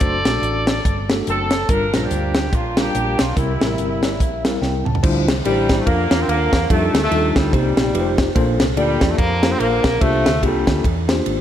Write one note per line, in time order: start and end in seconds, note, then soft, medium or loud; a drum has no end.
0.00 0.22 F#1 loud
0.00 0.17 A3 medium
0.00 0.17 D4 medium
0.00 0.17 F#4 medium
0.00 1.06 A4 medium
0.00 0.17 C5 medium
0.00 1.10 D5 loud
0.00 kick loud
0.00 closed hi-hat medium
0.25 0.40 A#1 medium
0.25 0.78 A3 medium
0.25 0.79 D4 medium
0.25 0.79 F#4 medium
0.25 0.78 D5 medium
0.25 snare loud
0.25 closed hi-hat medium
0.42 0.78 A1 medium
0.42 closed hi-hat medium
0.67 snare loud
0.67 closed hi-hat medium
0.85 1.21 G1 medium
0.85 kick medium
0.85 closed hi-hat medium
1.10 1.50 A3 medium
1.10 1.50 D4 medium
1.10 1.51 F#4 medium
1.10 1.50 A4 medium
1.10 snare loud
1.10 closed hi-hat medium
1.27 1.63 F#1 medium
1.27 1.67 C4 medium
1.27 1.67 D4 medium
1.27 1.67 A4 loud
1.27 closed hi-hat medium
1.51 snare loud
1.51 closed hi-hat medium
1.69 1.90 G1 loud
1.69 2.32 G2 medium
1.69 1.85 G3 medium
1.69 2.02 D4 medium
1.69 1.85 D4 medium
1.69 2.49 F4 medium
1.69 1.85 F4 medium
1.69 2.03 A#4 loud
1.69 1.85 A#4 medium
1.69 kick loud
1.69 closed hi-hat medium
1.94 2.09 A#1 medium
1.94 2.46 G3 medium
1.94 2.46 D4 medium
1.94 2.46 F4 medium
1.94 2.46 C5 medium
1.94 snare loud
1.94 closed hi-hat medium
2.03 2.51 A#3 medium
2.03 2.52 D4 medium
2.03 2.53 G4 medium
2.11 2.52 D2 medium
2.11 closed hi-hat medium
2.35 snare loud
2.35 closed hi-hat soft
2.52 2.88 A#1 medium
2.52 2.77 A#3 medium
2.52 2.76 D4 medium
2.52 2.77 F4 medium
2.52 kick loud
2.52 closed hi-hat medium
2.77 3.18 G3 medium
2.77 3.33 A#3 medium
2.77 3.17 D4 medium
2.77 3.33 D4 medium
2.77 3.17 F4 medium
2.77 3.19 G4 medium
2.77 3.18 A#4 medium
2.77 snare loud
2.77 closed hi-hat medium
2.95 3.16 A#1 medium
2.95 closed hi-hat medium
3.19 3.34 B1 medium
3.19 3.37 F4 medium
3.19 snare loud
3.19 closed hi-hat medium
3.37 3.57 C2 loud
3.37 3.99 C3 medium
3.37 4.58 G3 medium
3.37 3.52 G3 medium
3.37 4.58 A#3 medium
3.37 3.52 C4 medium
3.37 3.52 E4 medium
3.37 4.58 E4 medium
3.37 3.52 A#4 medium
3.37 kick loud
3.37 closed hi-hat medium
3.60 3.76 A1 medium
3.60 4.13 G3 medium
3.60 4.13 C4 medium
3.60 4.13 E4 medium
3.60 3.65 A4 medium
3.60 snare loud
3.60 closed hi-hat medium
3.66 4.15 A#4 medium
3.78 4.21 G1 medium
3.78 closed hi-hat medium
4.03 4.19 D5 medium
4.03 snare medium
4.03 closed hi-hat medium
4.20 4.56 A#1 medium
4.20 4.43 E5 medium
4.20 kick medium
4.20 closed hi-hat medium
4.45 4.85 G3 medium
4.45 4.85 C4 medium
4.45 4.85 E4 medium
4.45 4.85 A#4 medium
4.45 4.61 F5 medium
4.45 snare loud
4.45 closed hi-hat medium
4.62 4.82 C2 medium
4.62 4.84 G5 medium
4.62 snare medium
4.85 5.01 C#2 medium
4.85 5.02 A5 medium
4.85 mid tom medium
4.95 floor tom medium
5.03 5.24 D2 loud
5.03 5.65 D3 medium
5.03 5.33 G3 medium
5.03 5.33 D4 medium
5.03 5.33 E4 medium
5.03 5.32 F4 medium
5.03 5.33 C5 loud
5.03 kick loud
5.03 crash loud
5.27 5.42 C2 medium
5.27 snare loud
5.27 ride medium
5.45 5.81 A1 medium
5.45 5.84 C3 medium
5.45 5.84 E3 medium
5.45 5.76 G3 loud
5.45 5.86 G3 medium
5.45 5.86 D4 medium
5.45 5.86 E4 medium
5.45 5.86 G4 medium
5.45 5.51 A#4 medium
5.45 ride medium
5.51 5.88 C5 medium
5.69 kick medium
5.69 snare loud
5.69 ride soft
5.78 5.86 A3 medium
5.86 6.07 F2 loud
5.86 6.27 D3 medium
5.86 6.27 F3 medium
5.86 6.19 A#3 loud
5.86 6.06 D4 medium
5.86 6.06 F4 medium
5.86 6.06 A#4 medium
5.86 kick loud
5.86 ride medium
6.11 6.25 E2 medium
6.11 6.15 C#4 soft
6.11 6.51 F4 medium
6.11 6.51 A#4 medium
6.11 snare loud
6.11 ride medium
6.16 6.28 C4 loud
6.16 6.54 D4 medium
6.28 6.49 D#2 medium
6.28 6.67 D3 medium
6.28 6.67 F3 medium
6.28 6.70 A#3 loud
6.28 ride medium
6.53 6.67 E2 medium
6.53 kick medium
6.53 snare loud
6.53 ride medium
6.70 6.91 F2 loud
6.70 7.02 C3 medium
6.70 7.02 D#3 medium
6.70 6.99 G3 medium
6.70 7.00 A3 medium
6.70 6.99 D4 medium
6.70 6.99 D#4 medium
6.70 6.99 F4 medium
6.70 6.99 A4 medium
6.70 kick loud
6.70 ride medium
6.93 7.08 D2 medium
6.93 snare loud
6.93 ride medium
7.03 7.49 C3 medium
7.03 7.49 D#3 medium
7.03 7.34 A3 loud
7.11 7.32 D#2 loud
7.11 7.52 G3 medium
7.11 7.52 D4 medium
7.11 7.52 D#4 medium
7.11 7.52 F4 medium
7.11 7.52 A4 medium
7.11 ride medium
7.35 7.50 D2 loud
7.35 7.53 G3 medium
7.35 kick medium
7.35 snare loud
7.35 ride soft
7.53 7.73 C2 loud
7.53 8.14 A#2 medium
7.53 7.91 C3 medium
7.53 8.14 D#3 medium
7.53 8.15 G3 medium
7.53 7.72 A#3 medium
7.53 7.72 C4 medium
7.53 7.72 D#4 medium
7.53 7.72 G4 medium
7.53 7.72 C5 medium
7.53 kick loud
7.53 ride medium
7.76 7.91 A#1 medium
7.76 7.94 A#3 medium
7.76 7.94 C4 medium
7.76 7.93 D#4 medium
7.76 7.93 G4 medium
7.76 7.94 D5 medium
7.76 snare loud
7.76 ride medium
7.94 8.29 F1 loud
7.94 8.29 A3 medium
7.94 8.29 D#4 medium
7.94 8.29 F4 medium
7.94 8.29 G4 medium
7.94 8.00 B4 medium
7.94 ride medium
8.00 8.31 C5 medium
8.18 kick medium
8.18 snare loud
8.18 ride medium
8.35 8.59 A#1 loud
8.35 8.97 A#2 medium
8.35 8.65 A#3 loud
8.35 8.65 D4 medium
8.35 8.65 F4 medium
8.35 8.65 A4 medium
8.35 8.65 C5 loud
8.35 kick loud
8.35 ride medium
8.59 8.74 C2 medium
8.59 snare loud
8.59 ride medium
8.76 8.97 D2 medium
8.76 9.56 C3 medium
8.76 9.17 D3 medium
8.76 9.07 G3 medium
8.76 9.18 A#3 medium
8.76 9.18 D4 medium
8.76 9.18 F4 medium
8.76 9.18 A4 medium
8.76 9.18 D5 medium
8.76 ride medium
9.01 9.16 E2 loud
9.01 kick medium
9.01 snare loud
9.01 ride soft
9.09 9.18 A3 loud
9.17 9.53 F2 loud
9.17 9.59 D3 medium
9.17 9.58 F3 medium
9.17 9.48 A#3 loud
9.17 kick loud
9.17 ride medium
9.43 9.83 A#3 medium
9.43 9.47 C#4 soft
9.43 9.83 F4 medium
9.43 9.83 A4 medium
9.43 9.83 C5 medium
9.43 snare loud
9.43 ride medium
9.48 9.60 C4 loud
9.48 9.85 D4 medium
9.59 9.80 A#1 medium
9.59 9.98 D3 medium
9.59 9.98 F3 medium
9.59 10.01 A#3 loud
9.59 ride medium
9.84 9.99 B1 medium
9.84 kick medium
9.84 snare loud
9.84 ride medium
10.00 10.22 C2 loud
10.00 10.63 C3 medium
10.00 10.42 D3 medium
10.00 10.80 F3 medium
10.00 10.42 A3 loud
10.00 10.30 A#3 medium
10.00 10.30 D4 medium
10.00 10.30 F4 medium
10.00 10.31 G4 medium
10.00 10.30 C5 medium
10.00 kick loud
10.00 ride medium
10.26 10.41 D2 loud
10.26 snare loud
10.26 ride medium
10.43 10.63 C2 loud
10.43 11.22 A#2 medium
10.43 11.22 D3 medium
10.43 10.81 G3 medium
10.43 10.83 A#3 medium
10.43 10.83 D4 medium
10.43 10.83 F4 medium
10.43 10.83 G4 medium
10.43 10.49 G#4 medium
10.43 kick medium
10.43 ride medium
10.48 10.86 A4 medium
10.67 10.82 D2 medium
10.67 kick medium
10.67 snare loud
10.67 ride soft
10.84 11.19 E2 loud
10.84 kick loud
10.84 ride medium
11.08 11.41 A#3 medium
11.08 11.41 D4 medium
11.08 11.41 F4 medium
11.08 11.41 G4 medium
11.08 11.41 C5 medium
11.08 snare loud
11.08 ride medium
11.26 11.41 G#1 loud
11.26 ride medium